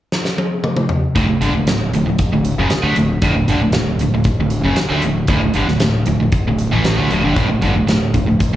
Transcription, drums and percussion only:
0, 0, Header, 1, 2, 480
1, 0, Start_track
1, 0, Key_signature, 2, "major"
1, 0, Tempo, 517688
1, 1071, Time_signature, 4, 2, 24, 8
1, 7939, End_track
2, 0, Start_track
2, 0, Title_t, "Drums"
2, 114, Note_on_c, 9, 38, 71
2, 206, Note_off_c, 9, 38, 0
2, 233, Note_on_c, 9, 38, 66
2, 326, Note_off_c, 9, 38, 0
2, 355, Note_on_c, 9, 48, 74
2, 447, Note_off_c, 9, 48, 0
2, 591, Note_on_c, 9, 47, 79
2, 683, Note_off_c, 9, 47, 0
2, 709, Note_on_c, 9, 47, 91
2, 802, Note_off_c, 9, 47, 0
2, 826, Note_on_c, 9, 43, 93
2, 918, Note_off_c, 9, 43, 0
2, 1073, Note_on_c, 9, 36, 109
2, 1076, Note_on_c, 9, 42, 76
2, 1165, Note_off_c, 9, 36, 0
2, 1169, Note_off_c, 9, 42, 0
2, 1313, Note_on_c, 9, 42, 64
2, 1405, Note_off_c, 9, 42, 0
2, 1548, Note_on_c, 9, 42, 83
2, 1554, Note_on_c, 9, 38, 114
2, 1641, Note_off_c, 9, 42, 0
2, 1647, Note_off_c, 9, 38, 0
2, 1793, Note_on_c, 9, 42, 69
2, 1886, Note_off_c, 9, 42, 0
2, 2026, Note_on_c, 9, 42, 83
2, 2030, Note_on_c, 9, 36, 103
2, 2119, Note_off_c, 9, 42, 0
2, 2123, Note_off_c, 9, 36, 0
2, 2268, Note_on_c, 9, 42, 67
2, 2361, Note_off_c, 9, 42, 0
2, 2503, Note_on_c, 9, 42, 74
2, 2509, Note_on_c, 9, 38, 102
2, 2596, Note_off_c, 9, 42, 0
2, 2602, Note_off_c, 9, 38, 0
2, 2743, Note_on_c, 9, 42, 60
2, 2836, Note_off_c, 9, 42, 0
2, 2983, Note_on_c, 9, 42, 79
2, 2986, Note_on_c, 9, 36, 109
2, 3076, Note_off_c, 9, 42, 0
2, 3079, Note_off_c, 9, 36, 0
2, 3226, Note_on_c, 9, 42, 58
2, 3319, Note_off_c, 9, 42, 0
2, 3453, Note_on_c, 9, 42, 73
2, 3458, Note_on_c, 9, 38, 115
2, 3546, Note_off_c, 9, 42, 0
2, 3551, Note_off_c, 9, 38, 0
2, 3701, Note_on_c, 9, 42, 63
2, 3794, Note_off_c, 9, 42, 0
2, 3932, Note_on_c, 9, 42, 72
2, 3941, Note_on_c, 9, 36, 99
2, 4025, Note_off_c, 9, 42, 0
2, 4034, Note_off_c, 9, 36, 0
2, 4174, Note_on_c, 9, 42, 61
2, 4267, Note_off_c, 9, 42, 0
2, 4414, Note_on_c, 9, 42, 72
2, 4420, Note_on_c, 9, 38, 100
2, 4507, Note_off_c, 9, 42, 0
2, 4513, Note_off_c, 9, 38, 0
2, 4656, Note_on_c, 9, 42, 57
2, 4748, Note_off_c, 9, 42, 0
2, 4890, Note_on_c, 9, 42, 76
2, 4899, Note_on_c, 9, 36, 110
2, 4983, Note_off_c, 9, 42, 0
2, 4992, Note_off_c, 9, 36, 0
2, 5133, Note_on_c, 9, 42, 52
2, 5226, Note_off_c, 9, 42, 0
2, 5269, Note_on_c, 9, 38, 33
2, 5362, Note_off_c, 9, 38, 0
2, 5375, Note_on_c, 9, 42, 86
2, 5381, Note_on_c, 9, 38, 120
2, 5468, Note_off_c, 9, 42, 0
2, 5474, Note_off_c, 9, 38, 0
2, 5616, Note_on_c, 9, 42, 60
2, 5709, Note_off_c, 9, 42, 0
2, 5859, Note_on_c, 9, 42, 71
2, 5864, Note_on_c, 9, 36, 109
2, 5952, Note_off_c, 9, 42, 0
2, 5957, Note_off_c, 9, 36, 0
2, 6106, Note_on_c, 9, 42, 62
2, 6198, Note_off_c, 9, 42, 0
2, 6347, Note_on_c, 9, 42, 74
2, 6353, Note_on_c, 9, 38, 100
2, 6440, Note_off_c, 9, 42, 0
2, 6446, Note_off_c, 9, 38, 0
2, 6588, Note_on_c, 9, 42, 61
2, 6681, Note_off_c, 9, 42, 0
2, 6828, Note_on_c, 9, 36, 114
2, 6828, Note_on_c, 9, 42, 85
2, 6920, Note_off_c, 9, 42, 0
2, 6921, Note_off_c, 9, 36, 0
2, 7066, Note_on_c, 9, 42, 56
2, 7067, Note_on_c, 9, 36, 73
2, 7159, Note_off_c, 9, 42, 0
2, 7160, Note_off_c, 9, 36, 0
2, 7310, Note_on_c, 9, 42, 88
2, 7316, Note_on_c, 9, 38, 106
2, 7403, Note_off_c, 9, 42, 0
2, 7408, Note_off_c, 9, 38, 0
2, 7546, Note_on_c, 9, 42, 61
2, 7550, Note_on_c, 9, 36, 75
2, 7639, Note_off_c, 9, 42, 0
2, 7642, Note_off_c, 9, 36, 0
2, 7791, Note_on_c, 9, 42, 78
2, 7792, Note_on_c, 9, 36, 101
2, 7884, Note_off_c, 9, 42, 0
2, 7885, Note_off_c, 9, 36, 0
2, 7939, End_track
0, 0, End_of_file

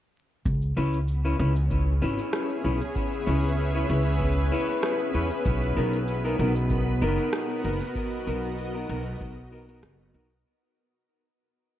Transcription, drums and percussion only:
0, 0, Header, 1, 2, 480
1, 0, Start_track
1, 0, Tempo, 625000
1, 349, Time_signature, 4, 2, 24, 8
1, 9059, End_track
2, 0, Start_track
2, 0, Title_t, "Drums"
2, 349, Note_on_c, 9, 36, 96
2, 349, Note_on_c, 9, 69, 53
2, 425, Note_off_c, 9, 69, 0
2, 426, Note_off_c, 9, 36, 0
2, 476, Note_on_c, 9, 69, 28
2, 553, Note_off_c, 9, 69, 0
2, 718, Note_on_c, 9, 69, 45
2, 795, Note_off_c, 9, 69, 0
2, 828, Note_on_c, 9, 69, 52
2, 905, Note_off_c, 9, 69, 0
2, 1199, Note_on_c, 9, 69, 44
2, 1275, Note_off_c, 9, 69, 0
2, 1310, Note_on_c, 9, 36, 105
2, 1310, Note_on_c, 9, 69, 54
2, 1386, Note_off_c, 9, 69, 0
2, 1387, Note_off_c, 9, 36, 0
2, 1678, Note_on_c, 9, 69, 43
2, 1755, Note_off_c, 9, 69, 0
2, 1789, Note_on_c, 9, 37, 86
2, 1789, Note_on_c, 9, 69, 55
2, 1866, Note_off_c, 9, 37, 0
2, 1866, Note_off_c, 9, 69, 0
2, 1919, Note_on_c, 9, 69, 30
2, 1996, Note_off_c, 9, 69, 0
2, 2159, Note_on_c, 9, 69, 44
2, 2236, Note_off_c, 9, 69, 0
2, 2270, Note_on_c, 9, 36, 105
2, 2270, Note_on_c, 9, 69, 56
2, 2347, Note_off_c, 9, 36, 0
2, 2347, Note_off_c, 9, 69, 0
2, 2398, Note_on_c, 9, 69, 31
2, 2475, Note_off_c, 9, 69, 0
2, 2639, Note_on_c, 9, 69, 45
2, 2715, Note_off_c, 9, 69, 0
2, 2751, Note_on_c, 9, 69, 54
2, 2827, Note_off_c, 9, 69, 0
2, 3118, Note_on_c, 9, 69, 46
2, 3194, Note_off_c, 9, 69, 0
2, 3229, Note_on_c, 9, 69, 57
2, 3230, Note_on_c, 9, 36, 110
2, 3306, Note_off_c, 9, 36, 0
2, 3306, Note_off_c, 9, 69, 0
2, 3599, Note_on_c, 9, 69, 43
2, 3675, Note_off_c, 9, 69, 0
2, 3709, Note_on_c, 9, 37, 91
2, 3709, Note_on_c, 9, 69, 54
2, 3786, Note_off_c, 9, 37, 0
2, 3786, Note_off_c, 9, 69, 0
2, 3837, Note_on_c, 9, 69, 29
2, 3914, Note_off_c, 9, 69, 0
2, 4077, Note_on_c, 9, 69, 47
2, 4154, Note_off_c, 9, 69, 0
2, 4187, Note_on_c, 9, 69, 54
2, 4188, Note_on_c, 9, 36, 104
2, 4264, Note_off_c, 9, 69, 0
2, 4265, Note_off_c, 9, 36, 0
2, 4317, Note_on_c, 9, 69, 31
2, 4394, Note_off_c, 9, 69, 0
2, 4555, Note_on_c, 9, 69, 42
2, 4632, Note_off_c, 9, 69, 0
2, 4666, Note_on_c, 9, 69, 52
2, 4743, Note_off_c, 9, 69, 0
2, 5035, Note_on_c, 9, 69, 42
2, 5112, Note_off_c, 9, 69, 0
2, 5146, Note_on_c, 9, 69, 52
2, 5148, Note_on_c, 9, 36, 110
2, 5222, Note_off_c, 9, 69, 0
2, 5225, Note_off_c, 9, 36, 0
2, 5516, Note_on_c, 9, 69, 41
2, 5593, Note_off_c, 9, 69, 0
2, 5628, Note_on_c, 9, 37, 95
2, 5628, Note_on_c, 9, 69, 52
2, 5705, Note_off_c, 9, 37, 0
2, 5705, Note_off_c, 9, 69, 0
2, 5756, Note_on_c, 9, 69, 31
2, 5833, Note_off_c, 9, 69, 0
2, 5996, Note_on_c, 9, 69, 46
2, 6072, Note_off_c, 9, 69, 0
2, 6108, Note_on_c, 9, 36, 103
2, 6108, Note_on_c, 9, 69, 53
2, 6185, Note_off_c, 9, 36, 0
2, 6185, Note_off_c, 9, 69, 0
2, 6236, Note_on_c, 9, 69, 29
2, 6313, Note_off_c, 9, 69, 0
2, 6476, Note_on_c, 9, 69, 41
2, 6553, Note_off_c, 9, 69, 0
2, 6588, Note_on_c, 9, 69, 49
2, 6665, Note_off_c, 9, 69, 0
2, 6957, Note_on_c, 9, 69, 42
2, 7033, Note_off_c, 9, 69, 0
2, 7069, Note_on_c, 9, 36, 115
2, 7069, Note_on_c, 9, 69, 51
2, 7146, Note_off_c, 9, 36, 0
2, 7146, Note_off_c, 9, 69, 0
2, 7438, Note_on_c, 9, 69, 41
2, 7514, Note_off_c, 9, 69, 0
2, 7549, Note_on_c, 9, 37, 96
2, 7549, Note_on_c, 9, 69, 52
2, 7626, Note_off_c, 9, 37, 0
2, 7626, Note_off_c, 9, 69, 0
2, 7677, Note_on_c, 9, 69, 30
2, 7754, Note_off_c, 9, 69, 0
2, 7918, Note_on_c, 9, 69, 43
2, 7994, Note_off_c, 9, 69, 0
2, 9059, End_track
0, 0, End_of_file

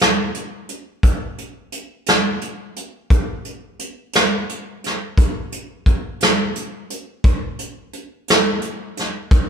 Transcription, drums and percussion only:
0, 0, Header, 1, 2, 480
1, 0, Start_track
1, 0, Tempo, 690449
1, 2158, Time_signature, 12, 3, 24, 8
1, 6600, End_track
2, 0, Start_track
2, 0, Title_t, "Drums"
2, 10, Note_on_c, 9, 38, 101
2, 80, Note_off_c, 9, 38, 0
2, 238, Note_on_c, 9, 42, 48
2, 308, Note_off_c, 9, 42, 0
2, 478, Note_on_c, 9, 42, 53
2, 547, Note_off_c, 9, 42, 0
2, 717, Note_on_c, 9, 42, 71
2, 718, Note_on_c, 9, 36, 90
2, 787, Note_off_c, 9, 36, 0
2, 787, Note_off_c, 9, 42, 0
2, 960, Note_on_c, 9, 42, 43
2, 1030, Note_off_c, 9, 42, 0
2, 1196, Note_on_c, 9, 42, 54
2, 1265, Note_off_c, 9, 42, 0
2, 1434, Note_on_c, 9, 42, 66
2, 1450, Note_on_c, 9, 38, 86
2, 1504, Note_off_c, 9, 42, 0
2, 1520, Note_off_c, 9, 38, 0
2, 1677, Note_on_c, 9, 42, 50
2, 1747, Note_off_c, 9, 42, 0
2, 1921, Note_on_c, 9, 42, 55
2, 1990, Note_off_c, 9, 42, 0
2, 2158, Note_on_c, 9, 36, 90
2, 2159, Note_on_c, 9, 42, 73
2, 2227, Note_off_c, 9, 36, 0
2, 2228, Note_off_c, 9, 42, 0
2, 2396, Note_on_c, 9, 42, 50
2, 2466, Note_off_c, 9, 42, 0
2, 2636, Note_on_c, 9, 42, 59
2, 2706, Note_off_c, 9, 42, 0
2, 2872, Note_on_c, 9, 42, 74
2, 2888, Note_on_c, 9, 38, 90
2, 2942, Note_off_c, 9, 42, 0
2, 2958, Note_off_c, 9, 38, 0
2, 3123, Note_on_c, 9, 42, 45
2, 3193, Note_off_c, 9, 42, 0
2, 3364, Note_on_c, 9, 42, 53
2, 3380, Note_on_c, 9, 38, 27
2, 3434, Note_off_c, 9, 42, 0
2, 3450, Note_off_c, 9, 38, 0
2, 3598, Note_on_c, 9, 36, 94
2, 3600, Note_on_c, 9, 42, 77
2, 3667, Note_off_c, 9, 36, 0
2, 3670, Note_off_c, 9, 42, 0
2, 3838, Note_on_c, 9, 42, 55
2, 3908, Note_off_c, 9, 42, 0
2, 4075, Note_on_c, 9, 36, 71
2, 4076, Note_on_c, 9, 42, 54
2, 4145, Note_off_c, 9, 36, 0
2, 4146, Note_off_c, 9, 42, 0
2, 4313, Note_on_c, 9, 42, 61
2, 4329, Note_on_c, 9, 38, 94
2, 4383, Note_off_c, 9, 42, 0
2, 4399, Note_off_c, 9, 38, 0
2, 4557, Note_on_c, 9, 42, 57
2, 4626, Note_off_c, 9, 42, 0
2, 4797, Note_on_c, 9, 42, 57
2, 4867, Note_off_c, 9, 42, 0
2, 5034, Note_on_c, 9, 36, 101
2, 5035, Note_on_c, 9, 42, 65
2, 5104, Note_off_c, 9, 36, 0
2, 5105, Note_off_c, 9, 42, 0
2, 5275, Note_on_c, 9, 42, 56
2, 5344, Note_off_c, 9, 42, 0
2, 5514, Note_on_c, 9, 42, 50
2, 5583, Note_off_c, 9, 42, 0
2, 5756, Note_on_c, 9, 42, 72
2, 5772, Note_on_c, 9, 38, 100
2, 5825, Note_off_c, 9, 42, 0
2, 5841, Note_off_c, 9, 38, 0
2, 5989, Note_on_c, 9, 42, 48
2, 6058, Note_off_c, 9, 42, 0
2, 6236, Note_on_c, 9, 42, 57
2, 6252, Note_on_c, 9, 38, 26
2, 6306, Note_off_c, 9, 42, 0
2, 6322, Note_off_c, 9, 38, 0
2, 6473, Note_on_c, 9, 36, 110
2, 6473, Note_on_c, 9, 42, 75
2, 6543, Note_off_c, 9, 36, 0
2, 6543, Note_off_c, 9, 42, 0
2, 6600, End_track
0, 0, End_of_file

